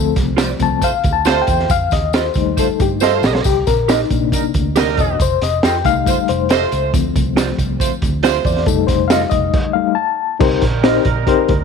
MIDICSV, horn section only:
0, 0, Header, 1, 2, 480
1, 0, Start_track
1, 0, Tempo, 435414
1, 1876, Time_signature, 4, 2, 24, 8
1, 12834, End_track
2, 0, Start_track
2, 0, Title_t, "Horn section"
2, 0, Program_c, 0, 61
2, 902, Note_on_c, 0, 72, 84
2, 904, Note_on_c, 0, 57, 80
2, 908, Note_on_c, 0, 65, 68
2, 1008, Note_off_c, 0, 72, 0
2, 1010, Note_off_c, 0, 57, 0
2, 1012, Note_off_c, 0, 65, 0
2, 1379, Note_on_c, 0, 57, 98
2, 1380, Note_on_c, 0, 72, 106
2, 1384, Note_on_c, 0, 65, 93
2, 1844, Note_off_c, 0, 57, 0
2, 1845, Note_off_c, 0, 72, 0
2, 1847, Note_off_c, 0, 65, 0
2, 2831, Note_on_c, 0, 57, 76
2, 2833, Note_on_c, 0, 72, 93
2, 2842, Note_on_c, 0, 65, 80
2, 2937, Note_off_c, 0, 57, 0
2, 2939, Note_off_c, 0, 72, 0
2, 2943, Note_off_c, 0, 65, 0
2, 3319, Note_on_c, 0, 72, 103
2, 3322, Note_on_c, 0, 65, 99
2, 3327, Note_on_c, 0, 57, 91
2, 3778, Note_off_c, 0, 72, 0
2, 3780, Note_off_c, 0, 65, 0
2, 3782, Note_off_c, 0, 57, 0
2, 4773, Note_on_c, 0, 55, 76
2, 4778, Note_on_c, 0, 63, 76
2, 4778, Note_on_c, 0, 70, 78
2, 4872, Note_off_c, 0, 55, 0
2, 4875, Note_off_c, 0, 63, 0
2, 4875, Note_off_c, 0, 70, 0
2, 5253, Note_on_c, 0, 63, 94
2, 5255, Note_on_c, 0, 70, 105
2, 5258, Note_on_c, 0, 55, 89
2, 5706, Note_off_c, 0, 63, 0
2, 5707, Note_off_c, 0, 70, 0
2, 5709, Note_off_c, 0, 55, 0
2, 6698, Note_on_c, 0, 65, 76
2, 6698, Note_on_c, 0, 72, 92
2, 6702, Note_on_c, 0, 57, 75
2, 6795, Note_off_c, 0, 65, 0
2, 6795, Note_off_c, 0, 72, 0
2, 6797, Note_off_c, 0, 57, 0
2, 7166, Note_on_c, 0, 72, 112
2, 7169, Note_on_c, 0, 65, 93
2, 7173, Note_on_c, 0, 57, 95
2, 7621, Note_off_c, 0, 72, 0
2, 7623, Note_off_c, 0, 65, 0
2, 7625, Note_off_c, 0, 57, 0
2, 8595, Note_on_c, 0, 65, 71
2, 8596, Note_on_c, 0, 57, 74
2, 8598, Note_on_c, 0, 72, 90
2, 8700, Note_off_c, 0, 65, 0
2, 8701, Note_off_c, 0, 57, 0
2, 8702, Note_off_c, 0, 72, 0
2, 9078, Note_on_c, 0, 65, 93
2, 9079, Note_on_c, 0, 72, 112
2, 9083, Note_on_c, 0, 57, 92
2, 9534, Note_off_c, 0, 65, 0
2, 9535, Note_off_c, 0, 72, 0
2, 9537, Note_off_c, 0, 57, 0
2, 11485, Note_on_c, 0, 63, 87
2, 11486, Note_on_c, 0, 55, 85
2, 11486, Note_on_c, 0, 70, 93
2, 12834, Note_off_c, 0, 55, 0
2, 12834, Note_off_c, 0, 63, 0
2, 12834, Note_off_c, 0, 70, 0
2, 12834, End_track
0, 0, End_of_file